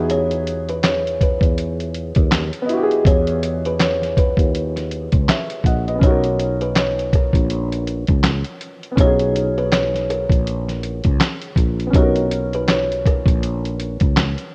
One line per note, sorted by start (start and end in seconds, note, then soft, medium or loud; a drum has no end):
0.00 1.38 E2 loud
0.00 2.60 B3 medium
0.00 2.63 D#4 medium
0.00 2.64 E4 medium
0.00 2.67 F#4 medium
0.00 2.72 G#4 medium
0.10 0.65 C#5 medium
0.10 closed hi-hat medium
0.31 closed hi-hat medium
0.47 closed hi-hat medium
0.69 0.82 B4 medium
0.69 closed hi-hat soft
0.84 1.17 C#5 medium
0.84 snare loud
0.84 clap medium
0.84 closed hi-hat medium
1.07 closed hi-hat soft
1.21 1.76 B4 medium
1.21 kick medium
1.21 closed hi-hat medium
1.41 2.11 E2 medium
1.41 kick medium
1.41 closed hi-hat soft
1.58 closed hi-hat medium
1.80 closed hi-hat medium
1.94 closed hi-hat medium
2.15 2.49 D#2 medium
2.15 kick medium
2.15 closed hi-hat soft
2.32 snare loud
2.32 clap medium
2.32 closed hi-hat medium
2.53 closed hi-hat soft
2.62 5.57 B3 medium
2.62 5.59 D#5 medium
2.69 5.61 E4 medium
2.69 5.63 F#4 medium
2.69 closed hi-hat medium
2.77 2.80 G4 medium
2.83 5.68 G#4 medium
2.91 closed hi-hat soft
3.05 4.34 E2 medium
3.05 3.61 C#5 medium
3.05 kick loud
3.05 closed hi-hat medium
3.27 closed hi-hat medium
3.43 closed hi-hat medium
3.65 3.79 B4 medium
3.65 closed hi-hat soft
3.80 4.14 C#5 medium
3.80 snare loud
3.80 clap medium
3.80 closed hi-hat medium
4.02 snare soft
4.02 closed hi-hat soft
4.17 4.72 B4 medium
4.17 kick medium
4.17 closed hi-hat medium
4.37 5.08 D#2 medium
4.37 kick medium
4.37 closed hi-hat soft
4.55 closed hi-hat medium
4.76 snare soft
4.76 closed hi-hat soft
4.91 closed hi-hat medium
5.12 5.27 C#2 medium
5.12 kick medium
5.12 closed hi-hat soft
5.29 5.64 C#5 soft
5.29 5.63 E5 medium
5.29 snare loud
5.29 clap medium
5.29 closed hi-hat medium
5.50 closed hi-hat soft
5.64 5.98 A#1 medium
5.64 5.86 D#5 medium
5.64 5.86 F#5 medium
5.64 kick medium
5.64 closed hi-hat medium
5.88 6.22 B4 soft
5.88 6.22 D#5 medium
5.88 closed hi-hat soft
5.95 8.90 B3 medium
5.95 8.92 C#4 medium
6.01 7.30 B1 medium
6.01 8.94 D#4 medium
6.01 6.57 C#5 medium
6.01 kick loud
6.01 closed hi-hat medium
6.06 8.96 F#4 medium
6.06 8.98 A#4 medium
6.24 closed hi-hat medium
6.39 closed hi-hat medium
6.61 6.75 B4 medium
6.61 closed hi-hat soft
6.76 7.10 C#5 medium
6.76 snare loud
6.76 clap medium
6.76 closed hi-hat medium
6.99 closed hi-hat soft
7.13 7.69 A#4 medium
7.13 kick medium
7.13 closed hi-hat medium
7.33 8.04 A#1 medium
7.33 kick medium
7.33 closed hi-hat soft
7.50 closed hi-hat medium
7.72 closed hi-hat medium
7.87 closed hi-hat medium
8.07 8.42 C#2 medium
8.07 kick loud
8.07 closed hi-hat soft
8.24 snare loud
8.24 clap medium
8.24 closed hi-hat medium
8.44 closed hi-hat soft
8.61 closed hi-hat medium
8.83 closed hi-hat soft
8.92 11.85 B3 medium
8.92 11.89 C#4 medium
8.97 10.26 B1 loud
8.97 11.91 D#4 medium
8.97 9.58 C#5 loud
8.97 kick loud
8.97 closed hi-hat medium
9.03 11.92 F#4 medium
9.07 11.95 G#4 medium
9.19 closed hi-hat medium
9.36 closed hi-hat medium
9.58 9.71 B4 medium
9.58 closed hi-hat soft
9.72 10.06 C#5 medium
9.72 snare loud
9.72 clap medium
9.72 closed hi-hat medium
9.94 snare soft
9.94 closed hi-hat soft
10.10 10.65 A#4 medium
10.10 closed hi-hat medium
10.30 11.00 A#1 medium
10.30 kick medium
10.30 closed hi-hat medium
10.47 closed hi-hat medium
10.69 snare soft
10.69 closed hi-hat soft
10.83 closed hi-hat medium
11.04 11.19 C#2 medium
11.04 kick medium
11.04 closed hi-hat medium
11.20 snare loud
11.20 clap medium
11.20 closed hi-hat medium
11.41 closed hi-hat soft
11.56 11.90 A#1 loud
11.56 kick medium
11.56 closed hi-hat medium
11.80 closed hi-hat soft
11.87 14.55 B3 medium
11.87 14.55 C#4 medium
11.93 13.22 B1 medium
11.93 14.55 D#4 medium
11.93 12.50 C#5 medium
11.93 kick loud
11.93 closed hi-hat medium
11.98 14.55 F#4 medium
11.98 14.55 A#4 medium
12.16 closed hi-hat medium
12.31 closed hi-hat medium
12.53 12.68 B4 medium
12.53 closed hi-hat soft
12.68 13.02 C#5 medium
12.68 snare loud
12.68 clap medium
12.68 closed hi-hat medium
12.92 closed hi-hat soft
13.06 13.61 A#4 medium
13.06 kick medium
13.06 closed hi-hat medium
13.26 13.97 A#1 medium
13.26 kick medium
13.26 closed hi-hat medium
13.43 closed hi-hat medium
13.65 closed hi-hat medium
13.80 closed hi-hat medium
14.00 14.35 C#2 medium
14.00 kick medium
14.00 closed hi-hat medium
14.17 snare loud
14.17 clap medium
14.17 closed hi-hat medium
14.38 closed hi-hat soft